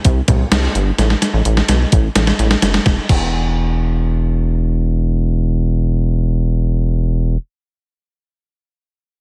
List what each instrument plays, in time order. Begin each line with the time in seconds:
0.05 analog synth bass C2, kick, closed hi-hat
0.28 analog synth bass C2, kick, closed hi-hat, mid tom
0.51 analog synth bass C2, snare, closed hi-hat
0.75 analog synth bass G1, closed hi-hat
0.98 analog synth bass A1, snare, closed hi-hat
1.10 snare
1.22 snare, closed hi-hat
1.33 analog synth bass A1
1.45 analog synth bass A1, closed hi-hat
1.57 snare
1.68 analog synth bass B1, snare, closed hi-hat
1.92 analog synth bass A1, kick, closed hi-hat
2.15 analog synth bass A1, snare, closed hi-hat
2.27 snare
2.39 analog synth bass A1, closed hi-hat
2.51 snare
2.62 analog synth bass F#1, snare, closed hi-hat
2.74 snare
2.86 analog synth bass E1, kick, snare
3.09 analog synth bass E1, kick, crash